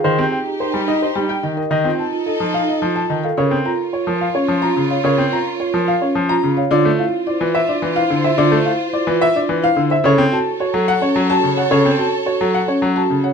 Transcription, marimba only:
\new Staff \with { instrumentName = "Marimba" } { \time 3/4 \key f \minor \tempo 4 = 108 r16 g'16 r16 g'16 bes'16 r16 ees'16 r16 g'16 r16 ees''16 bes'16 | r16 f'16 r16 f'16 a'16 r16 ees'16 r16 f'16 r16 ees''16 a'16 | \key bes \minor bes'16 r16 f'16 r16 f'16 bes'16 r16 des'16 r16 f'16 r16 des''16 | bes'16 r16 f'16 r16 f'16 bes'16 r16 des'16 r16 f'16 r16 des''16 |
f'16 r16 e'16 r16 e'16 f'16 r16 d'16 r16 e'16 r16 c''16 | f'16 r16 e'16 r16 e'16 f'16 r16 d'16 r16 e'16 r16 c''16 | a'16 r16 ges'16 r16 ges'16 a'16 r16 des'16 r16 ges'16 r16 des''16 | a'16 r16 ges'16 r16 ges'16 a'16 r16 des'16 r16 ges'16 r16 des''16 | }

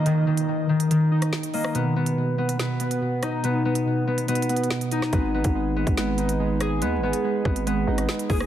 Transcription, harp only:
\new Staff \with { instrumentName = "Harp" } { \time 4/4 \key ces \lydian \tempo 4 = 142 <ees bes>8 ees4 ees8 ees4. bes8 | b8 b4 b8 b4. dis'8 | b8 b4 b8 b4. dis'8 | ces'8 ces'4 ces'8 ces'4. aes'8 |
ces'8 ces'4 ces'8 ces'4. aes'8 | }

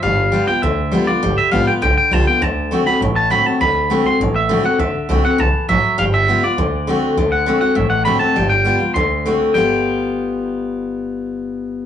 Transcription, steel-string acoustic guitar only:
\new Staff \with { instrumentName = "Steel-string acoustic guitar" } { \time 4/4 \key g \mixolydian \tempo 4 = 202 << { r4 <g b f'>8 <b f'>8 r4 <g b f'>8 <b f'>8 | r4 <g b f'>8 <b f'>8 r4 <g b f'>8 <b f'>8 | r4 <d a c' fis'>8 <c' fis'>8 r4 <d a c' fis'>8 <c' fis'>8 | r4 <d a c' fis'>8 <c' fis'>8 r4 <d a c' fis'>8 <c' fis'>8 |
r4 <d a c' fis'>8 <c' fis'>8 r2 | r4 <g b f'>8 <b f'>8 r4 <d a c' fis'>4 | r4 <d a c' fis'>8 <c' fis'>8 r4 <d a c' fis'>8 <c' fis'>8 | r4 <g b f'>8 <b f'>8 r4 <d a c' fis'>4 |
<g b f'>1~ | <g b f'>1 | } \\ { g2 d2 | g2 d2 | d2 a,2 | d2 a,2 |
d2 e4 fis4 | g2 d2 | d2 a,2 | g2 d2 |
r1 | r1 | } >> }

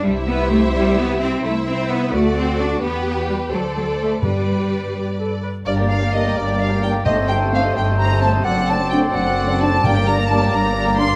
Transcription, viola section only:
\new Staff \with { instrumentName = "Viola section" } { \time 6/8 \key g \major \tempo 4. = 86 <g' c''>2. | <e' c''>4. <fis' a'>4. | <g' b'>4. <a' c''>4. | <g' b'>4. g'8 a'8 b'8 |
\key g \minor <g d'>16 bes16 <g d'>16 bes16 <g d'>16 bes16 <g d'>16 bes16 <g d'>16 bes16 <g d'>16 bes16 | <a ees'>16 <c' g'>16 <a ees'>16 <c' g'>16 <a ees'>16 <c' g'>16 <a ees'>16 <c' g'>16 <a ees'>16 <c' g'>16 <a ees'>16 <c' g'>16 | <a d'>16 <c' fis'>16 <a d'>16 <c' fis'>16 <a d'>16 <c' fis'>16 <a d'>16 <c' fis'>16 <a d'>16 <c' fis'>16 <a d'>16 <c' fis'>16 | <g d'>16 bes16 <g d'>16 bes16 <g d'>16 bes16 <g d'>16 bes16 <g d'>16 bes16 <g d'>16 bes16 | }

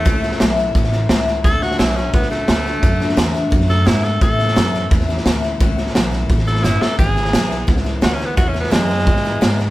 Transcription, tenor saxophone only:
\new Staff \with { instrumentName = "Tenor saxophone" } { \time 4/4 \key a \major \tempo 4 = 173 a4. r2 r8 | a'8 fis'8 e'8 cis'8 b8 a4.~ | a4. r4 a'8 e'8 a'8 | a'2 r2 |
r2 r8 a'8 e'8 a'8 | gis'2 r4 \tuplet 3/2 { fis'8 cis'8 b8 } | \tuplet 3/2 { fis'8 cis'8 b8 } gis2. | }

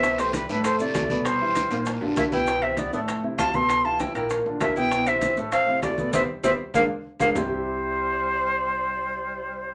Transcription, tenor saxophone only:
\new Staff \with { instrumentName = "Tenor saxophone" } { \time 4/4 \key c \major \tempo 4 = 197 c'8 a8 g8 g8 a8 a4. | g2 r4 bes8 e'8~ | e'8 c'8 b8 b8 r4 f'8 g'8~ | g'8 f'8 e'8 e'8 r4 bes8 e'8~ |
e'8 c'4 r8 c'4 a4 | c'8 r8 c'8 r8 bes8 r4 bes8 | g1~ | g1 | }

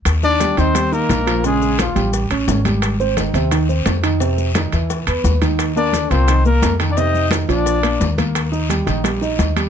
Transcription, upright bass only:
\new Staff \with { instrumentName = "Upright bass" } { \clef bass \time 4/4 \key ees \major \tempo 4 = 174 ees,4. ees,4. bes,,4~ | bes,,4. a,,4 a,,8 aes,,4~ | aes,,4. ees,4. f,4~ | f,4. fes,4 e,8 ees,4~ |
ees,4. c,4. f,4~ | f,4. bes,,4. ees,4~ | ees,4. bes,,4. ees,4 | }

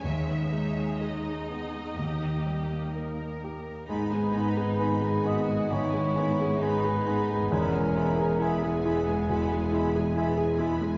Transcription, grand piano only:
\new Staff \with { instrumentName = "Grand piano" } { \time 4/4 \key gis \minor \tempo 4 = 66 dis,8 gis8 gis'8 b8 dis,8 g8 ais'8 g'8 | gis,16 gis16 b16 gis'16 b'16 gis'16 b16 gis16 dis16 gis16 b16 gis'16 b'16 gis'16 b16 gis16 | e,16 gis16 e'16 gis'16 e''16 gis'16 e'16 gis16 b,16 gis16 e'16 gis'16 e''16 gis'16 e'16 gis16 | }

